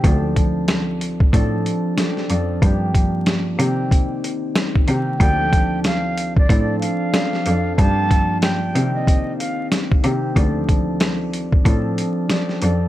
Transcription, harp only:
X:1
M:4/4
L:1/8
Q:"Swing 16ths" 1/4=93
K:Dphr
V:1 name="Harp"
[F,CDA]4 [F,CDA]2 [F,CDA] [F,CDA] | [F,B,DG]3 [E,B,CG]4 [E,B,CG] | [F,CDA]4 [F,CDA]2 [F,CDA] [F,CDA] | [F,B,DG]3 [E,B,CG]4 [E,B,CG] |
[F,CDA]4 [F,CDA]2 [F,CDA] [F,CDA] |]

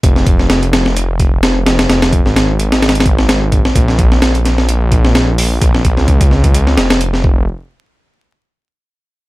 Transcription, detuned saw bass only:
X:1
M:4/4
L:1/16
Q:"Swing 16ths" 1/4=129
K:Fm
V:1 name="Detuned saw bass" clef=bass
F,,,16 | F,,,3 A,,,12 z | B,,,16 | B,,,3 D,,6- D,, F,,,4 F,,,2 |
z16 |]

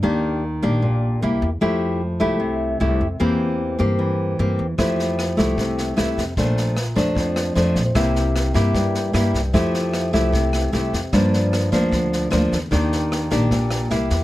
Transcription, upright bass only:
X:1
M:4/4
L:1/8
Q:1/4=151
K:F
V:1 name="Upright bass" clef=bass
_E,,3 B,,,3 C,, =E,, | F,,3 C,,3 C,, F,, | E,,3 G,,3 G,, E,, | F,,3 C,,3 C,, F,, |
B,,,3 F,,3 F,, B,,, | C,,3 G,,3 G,, C,, | F,,3 C,,3 C,, F,, | G,,3 D,,3 D,, E,, |
_E,,3 B,,,3 C,, =E,, |]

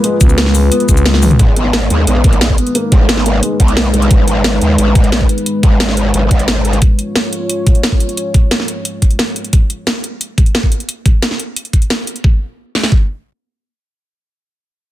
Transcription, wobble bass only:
X:1
M:4/4
L:1/8
Q:1/4=177
K:G#dor
V:1 name="Wobble bass" clef=bass
z8 | G,,,3 D,, A,,,3 z | z G,,,3 z B,,,3 | G,,,3 D,, A,,,3 z |
z G,,,3 G,,, G,,,3 | z8 | z8 | z8 |
z8 | z8 | z8 |]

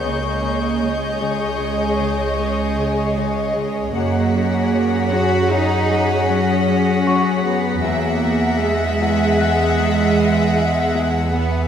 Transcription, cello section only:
X:1
M:5/4
L:1/8
Q:1/4=77
K:C#dor
V:1 name="Cello section"
A,2 G,8 | A,3 F D2 C3 B, | A,2 G,6- G, B, |]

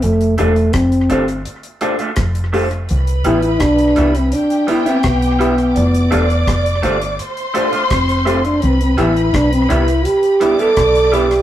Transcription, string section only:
X:1
M:4/4
L:1/8
Q:1/4=84
K:C
V:1 name="String section"
z8 | [Bb]4 [Gg]4 | [dd']4 [cc']4 | [Bb]4- [Bb] [dd']3 |]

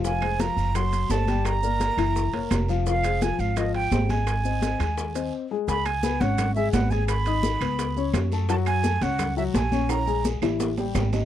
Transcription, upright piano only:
X:1
M:4/4
L:1/8
Q:1/4=170
K:Ab
V:1 name="Upright piano"
[F,Ff] [A,Ac] [F,Ff]2 [^F,^F^f]2 [=A,=Ac] [G,Gg]- | [G,Gg] [B,B=d] [B,Bd] [=E,=E=e]2 [B,B_d]2 [F,Ff] | [F,Ff] [A,Ac] [F,Ff]2 [F,Ff]2 [A,Ac] [A,Aa]- | [A,Aa] [Cce] [Cce] [A,Aa]2 [Cce]2 [A,Aa] |
[K:C#m] [G,Gg]2 [B,Bb] [Ccc']2 [G,Gg] [B,Bb] [Ggg']- | [Ggg'] [Ddd']2 [B,Bb]2 [Ccc']2 [A,Aa] | [F,Ff]2 [A,Aa] [Ccc']2 [F,Ff] [A,Aa] [Ccc']- | [Ccc'] [G,Gg]2 [E,Ee]2 [=G,=G=g]2 [D,Dd] |]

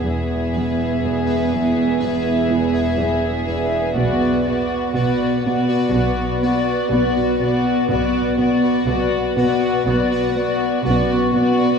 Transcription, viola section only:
X:1
M:4/4
L:1/8
Q:1/4=61
K:Bdor
V:1 name="Viola section"
B,8 | B, B, B, B, B, B, B, B, | B, B, B, B, B, B, B, B, |]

